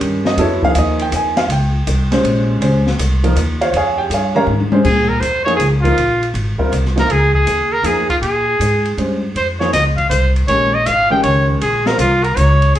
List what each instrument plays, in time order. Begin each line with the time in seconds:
Already playing: grand piano D#3 C#4 G4 G#4
0.01 upright bass G2, ride
0.25 grand piano D#5, snare
0.37 upright bass F2, grand piano F#3 B3 E4 A4, ride
0.41 grand piano C#5
0.63 grand piano F3 A#3 D#4 G#4 F5, kick
0.75 upright bass D#2, grand piano D#5, hi-hat pedal, ride
0.99 grand piano G5, ride
1.12 upright bass F2, grand piano G#5, hi-hat pedal, ride
1.37 grand piano F5, snare, ride
1.48 upright bass C#2, grand piano G5, ride
1.87 upright bass C2, hi-hat pedal, ride
2.11 grand piano G#3 C#4 G4 C5, snare, ride
2.23 upright bass A#1, ride
2.61 upright bass C#2, grand piano G#3 C#4 G4 C5, ride
2.87 snare
2.98 upright bass C2, hi-hat pedal, ride
3.24 grand piano F3 A#3 D#4 A#4, ride
3.36 upright bass D#2, hi-hat pedal, ride
3.61 grand piano F4 C5 C#5 F5, ride
3.73 upright bass F2, grand piano G#4 C#5 F5 G#5, ride
3.98 grand piano G4 G5
4.10 upright bass G2, grand piano G#4 C#5 G#5, hi-hat pedal, ride
4.14 grand piano F5
4.35 grand piano D#3 G#3 C#4 G4 A#4 C#5 F5 A#5
4.47 upright bass G#2, high tom
4.60 high tom
4.72 grand piano G#3 C#4 G4 C5, high tom
4.85 upright bass A#2, trumpet G#4, kick, crash
5.09 trumpet A#4, kick
5.21 upright bass F2, trumpet C5, hi-hat pedal, ride
5.45 grand piano F3 A#3 D#4 G#4, trumpet C#5, ride
5.57 upright bass C#2, trumpet G#4, hi-hat pedal, ride
5.82 grand piano F3 A#3 D#4 A#4, trumpet F4, kick, ride
5.97 upright bass A#1, ride
6.23 ride
6.34 upright bass G#1, ride
6.58 grand piano G3 C4 F4 A#4, muted upright bass stroke, kick
6.72 upright bass C2, hi-hat pedal, ride
6.85 snare
6.96 grand piano F3 A#3 D#4 F4, trumpet A#4, snare, ride
7.08 upright bass C#2, trumpet G#4, ride
7.34 trumpet G#4, kick
7.46 upright bass D#2, hi-hat pedal, ride
7.73 trumpet A#4
7.83 upright bass F2, grand piano F3 A#3 D#4 G#4, trumpet G#4, hi-hat pedal, ride
8.10 trumpet F4, kick, ride
8.21 upright bass A#2, trumpet G#4, ride
8.60 upright bass G#2, hi-hat pedal, ride
8.85 ride
8.97 upright bass G2, grand piano G#3 C#4 G4 C5, ride
9.35 upright bass F2, trumpet C5, ride
9.60 grand piano F3 A#3 D#4 G#4, trumpet C#5, snare
9.73 upright bass C#2, trumpet D#5, snare, hi-hat pedal, ride
9.97 trumpet F5, kick, ride
10.10 upright bass C2, trumpet C5, hi-hat pedal, ride
10.36 ride
10.48 upright bass A#1, grand piano D#3 G#3 C#4 G4, trumpet C#5, ride
10.74 trumpet D#5
10.86 upright bass G#1, trumpet F5, hi-hat pedal, ride
11.10 grand piano D#3 G#3 C#4 G4, trumpet G5
11.23 upright bass C#2, trumpet C#5, ride
11.61 upright bass A#1, trumpet G#4, ride
11.86 grand piano G3 C4 F4 A#4, trumpet A#4, snare
11.98 upright bass C2, trumpet F4, hi-hat pedal, ride
12.24 trumpet A#4, ride
12.36 upright bass C#2, trumpet C#5, hi-hat pedal, ride
12.62 ride
12.74 upright bass F2, ride